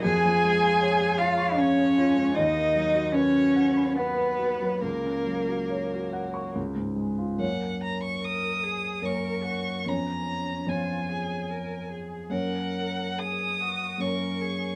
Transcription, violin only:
\new Staff \with { instrumentName = "Violin" } { \time 3/4 \key fis \major \tempo 4 = 73 gis''4. eis''8 cis''4 | dis''4 cis''4 b'4 | ais'2 r4 | fis''8 ais''16 cis'''16 dis'''4 cis'''4 |
ais''4 gis''4. r8 | fis''4 dis'''4 cis'''4 | }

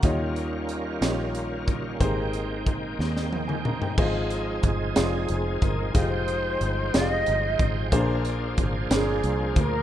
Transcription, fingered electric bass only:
\new Staff \with { instrumentName = "Fingered electric bass" } { \clef bass \time 6/8 \key aes \major \tempo 4. = 61 ees,4. bes,,4. | aes,,4. ees,4. | aes,,4 g,,8 f,,8 f,,8 g,,8 | f,,4 g,,8 f,,8 g,,8 aes,,8 |
bes,,4 aes,,8 g,,8 c,8 d,8 | }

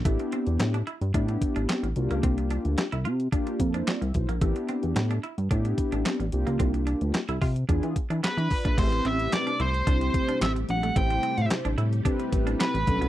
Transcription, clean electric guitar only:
\new Staff \with { instrumentName = "Clean electric guitar" } { \time 4/4 \key c \mixolydian \tempo 4 = 110 a16 r16 c'16 r8 d'16 e'16 r16 d'16 r8 d'16 c'16 r8 bes16 | c'16 r16 d'16 r8 e'16 f'16 r16 d'16 r8 d'16 c'16 r8 bes16 | a16 r16 c'16 r8 d'16 e'16 r16 d'16 r8 d'16 c'16 r8 bes16 | c'16 r16 d'16 r8 e'16 f'16 r16 d'16 r8 d'16 b16 r8 d'16 |
\key a \minor a16 r16 c'16 r8 d'16 e'16 r16 d'16 r8 d'16 c'16 r8 a16 | a16 r16 c'16 r8 d'16 e'16 r16 d'16 r8 d'16 c'16 r8 b16 | }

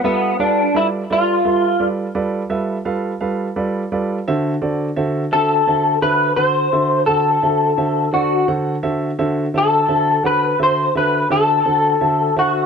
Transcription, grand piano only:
\new Staff \with { instrumentName = "Grand piano" } { \time 12/8 \key d \dorian \tempo 4. = 57 <g f' a' b' e''>8 <g f' a' b' f''>8 <g f' a' b' d''>8 <g f' a' b' d''>8 <g f' a' b' e''>8 <g f' a' b' d''>8 <g f' a' b' d''>8 <g f' a' b' e''>8 <g f' a' b' f''>8 <g f' a' b' f''>8 <g f' a' b' d''>8 <g f' a' b' d''>8 | <d fis' a' c'' e''>8 <d fis' a' c'' d''>8 <d fis' a' c'' e''>8 <d fis' a' c'' e''>8 <d fis' a' c'' e''>8 <d fis' a' c'' e''>8 <d fis' a' c'' fis''>8 <d fis' a' c'' e''>8 <d fis' a' c'' fis''>8 <d fis' a' c'' e''>8 <d fis' a' c'' e''>8 <d fis' a' c'' d''>8 | <d fis' a' c'' fis''>8 <d fis' a' c'' e''>8 <d fis' a' c'' e''>8 <d fis' a' c'' e''>8 <d fis' a' c'' e''>8 <d fis' a' c'' fis''>8 <d fis' a' c'' e''>8 <d fis' a' c'' e''>8 <d fis' a' c'' e''>8 <d fis' a' c'' fis''>8 <d fis' a' c'' e''>8 <d fis' a' c'' e''>8 | }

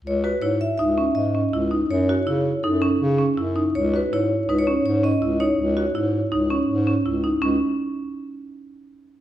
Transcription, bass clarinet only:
\new Staff \with { instrumentName = "Bass clarinet" } { \clef bass \time 5/4 \key cis \minor \tempo 4 = 163 cis,4 gis,4 cis,4 gis,4 cis,4 | fis,4 cis4 fis,4 cis4 fis,4 | cis,4 gis,4 cis,4 gis,4 cis,4 | cis,4 gis,4 cis,4 gis,4 cis,4 |
cis,8 r1 r8 | }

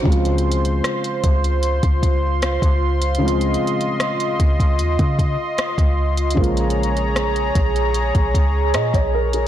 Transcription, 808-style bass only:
\new Staff \with { instrumentName = "808-style bass" } { \clef bass \time 4/4 \key des \major \tempo 4 = 76 des,4 r8 des,8. des,4 des,8.~ | des,8 r4 des,8 ees,16 des8 r8 des,8. | bes,,4. bes,,8. bes,,16 des,8 bes,16 bes,,8. | }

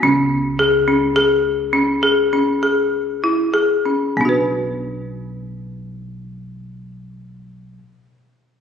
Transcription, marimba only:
\new Staff \with { instrumentName = "Marimba" } { \time 7/4 \key b \dorian \tempo 4 = 94 cis'4 gis'8 cis'8 gis'4 cis'8 gis'8 cis'8 gis'4 e'8 gis'8 cis'8 | <b d' fis' b'>1.~ <b d' fis' b'>4 | }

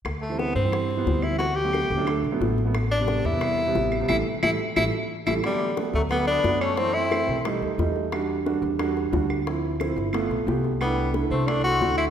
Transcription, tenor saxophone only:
\new Staff \with { instrumentName = "Tenor saxophone" } { \time 4/4 \key g \major \tempo 4 = 179 r8 a8 b8 c'2 e'8 | fis'8 g'2 r4. | r8 d'4 e'2~ e'8 | e'8 r8 e'8 r8 e'8 r4 e'8 |
g4 r8 a8 b8 d'4 cis'8 | c'8 e'4. r2 | r1 | r1 |
b4 r8 c'8 d'8 fis'4 e'8 | }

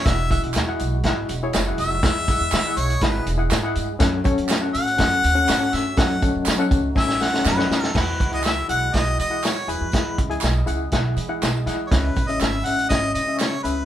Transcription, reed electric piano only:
<<
  \new Staff \with { instrumentName = "Reed electric piano" } { \time 4/4 \key e \major \tempo 4 = 122 <e' gis' fis''>8 <e' gis' fis''>8 r16 <e' gis' fis''>8 r16 <e' gis' fis''>8 r16 <e' gis' cis''>8 <e' gis' fis''>8 r16 | <e' gis' fis''>8 <e' gis' fis''>8 r16 <e' gis' fis''>8 r16 <e' gis' fis''>8 r16 <e' gis' fis''>8 <e' gis' fis''>8 r16 | <cis' a' fis''>8 <cis' a' cis''>8 r16 <cis' a' fis''>8 r16 <cis' a' fis''>8 r16 <cis' a' fis''>8 <cis' a' fis''>8 r16 | <cis' a' fis''>8 <cis' a' fis''>8 r16 <cis' a' fis''>8 r16 <cis' a' gis''>8 r16 <cis' a' fis''>8 <cis' a' fis''>8 r16 |
<e' gis' fis''>8 r16 <e' gis' fis''>8 r16 <e' gis' fis''>8 <e' gis' fis''>8 r16 <e' gis' fis''>8 r16 <e' gis' gis''>8 | <e' gis' fis''>8 r16 <e' gis' gis''>8 r16 <e' gis' fis''>8 <e' gis' fis''>8 r16 <e' gis' fis''>8 r16 <e' gis' fis''>8 | <cis' gis' e''>8 r16 <cis' gis' e''>8 r16 <cis' gis' e''>8 <cis' gis' e''>8 r16 <cis' gis' e''>8 r16 <cis' gis' e''>8 | }
  \new Staff \with { instrumentName = "Reed electric piano" } { \clef bass \time 4/4 \key e \major e4. r2 r8 | e4. r2 r8 | r1 | r1 |
e4. r2 r8 | e4. r2 r8 | cis4. r2 r8 | }
>>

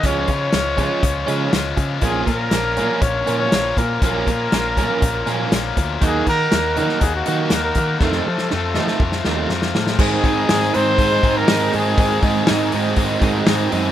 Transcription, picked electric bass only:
\new Staff \with { instrumentName = "Picked electric bass" } { \clef bass \time 4/4 \key aes \mixolydian \tempo 4 = 121 des,8 des8 des,8 des16 r16 des,8 des8 des,8 des8 | bes,,8 bes,8 bes,,8 bes,16 r16 bes,,8 bes,8 bes,,8 bes,8 | bes,,8 bes,8 bes,,8 bes,16 r16 bes,,8 bes,8 bes,,8 d,8 | ees,8 ees8 ees,8 ees16 r16 ees,8 ees8 ees,8 ees8 |
f,8 f8 f,8 f16 r16 f,8 ees,8 f,8 a,8 | aes,8 aes,8 aes,8 aes,8 aes,8 aes,8 aes,8 aes,8 | aes,8 aes,8 aes,8 aes,8 aes,8 aes,8 aes,8 ges,8 | }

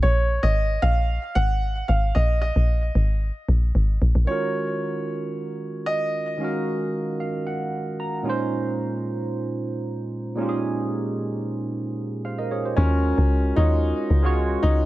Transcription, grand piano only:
\new Staff \with { instrumentName = "Grand piano" } { \time 4/4 \key ees \minor \tempo 4 = 113 des''8. ees''8. f''4 ges''4 f''8 | ees''8 ees''2. r8 | des''2. ees''4~ | ees''2.~ ees''8 r8 |
r1 | r1 | des'4. ees'4. r8 ees'8 | }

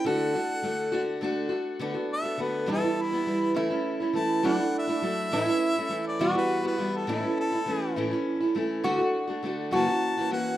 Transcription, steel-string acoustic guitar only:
\new Staff \with { instrumentName = "Steel-string acoustic guitar" } { \time 6/8 \key d \major \tempo 4. = 68 <d a d' fis'>8 <a d' fis'>8 <d a d' fis'>8 <d a d' fis'>8 <d a d' fis'>8 <a d' fis'>8 | <d a b fis'>16 <a b fis'>8 <a b fis'>16 <d a b fis'>8 <e, b, e g b e'>16 <e g b e'>8 <e g b e'>16 <e g b e'>8 | <e a cis' e'>16 <a cis' e'>8 <a cis' e'>16 <e a cis' e'>8 <fis a d' e'>16 <a d' e'>8 <a d' e'>16 <fis a d' e'>8 | <a, e a cis' e'>16 <a cis' e'>8 <a cis' e'>16 <e a cis' e'>8 <e, b, e g b fis'>16 <e g b fis'>8 <e g b fis'>16 <e g b fis'>8 |
<a, e a cis' e'>16 <a cis' e'>8 <a cis' e'>16 <e a cis' e'>8 <a, e a cis' e'>16 <a cis' e'>8 <a cis' e'>16 <e a cis' e'>8 | <d a d' fis'>16 <a d' fis'>8 <a d' fis'>16 <d a d' fis'>8 <fis, cis e ais cis' fis'>16 <e ais cis' fis'>8 <e ais cis' fis'>16 <e ais cis' fis'>8 | }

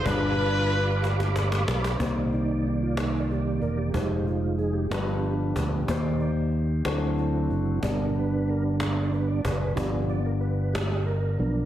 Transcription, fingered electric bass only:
\new Staff \with { instrumentName = "Fingered electric bass" } { \clef bass \time 6/8 \key c \minor \tempo 4. = 62 g,,2~ g,,8 b,,8 | c,2~ c,8 e,,8 | f,,4. g,,4 d,8 | ees,4. d,4 fis,,8 |
g,,2~ g,,8 fis,,8 | g,,2~ g,,8 b,,8 | }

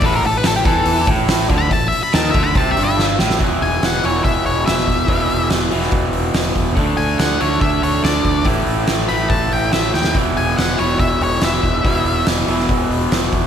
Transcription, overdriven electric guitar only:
\new Staff \with { instrumentName = "Overdriven electric guitar" } { \clef bass \time 4/4 \key a \major \tempo 4 = 142 a,8 a,8 a,8 e4 a,4 d8 | a,8 r8 dis8 d8 c8 g,4 a,8 | <e, b, e>4. <e, b, e>2~ <e, b, e>8 | <e, b, e>4. <e, b, e>2~ <e, b, e>8 |
<d a d'>4. <d a d'>2~ <d a d'>8 | <a, e a>4. <a, e a>2~ <a, e a>8 | <e, b, e>4. <e, b, e>2~ <e, b, e>8 | <e, b, e>4. <e, b, e>2~ <e, b, e>8 | }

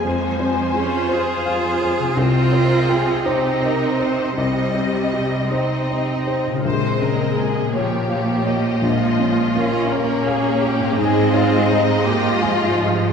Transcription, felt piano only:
\new Staff \with { instrumentName = "Felt piano" } { \time 6/8 \key c \phrygian \tempo 4. = 55 <f, c''>8 c'8 aes'8 c''8 f''8 c''8 | c,8 c'8 g''8 c''8 ees''8 c''8 | c,8 c'8 g'8 c''8 ees''8 c''8 | bes,,8 des8 bes'8 des''8 f''8 des''8 |
bes,,8 des'8 bes'8 des''8 f''8 des''8 | aes,8 ees'8 ees''8 aes'8 aes''8 ees''8 | }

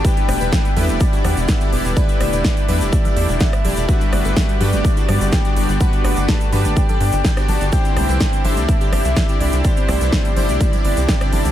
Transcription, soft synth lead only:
\new Staff \with { instrumentName = "Soft synth lead" } { \time 4/4 \key g \major \tempo 4 = 125 g''8 g''4 e''8 d''8 fis''8 e''8 b'8 | d''8 d''2~ d''8 e''4 | e''4. d''8 d''4 g''4 | fis''4 a''4 g''4 r8 a''8 |
g''8 g''4 e''4~ e''16 e''8. d''8~ | d''2. g''8 a''8 | }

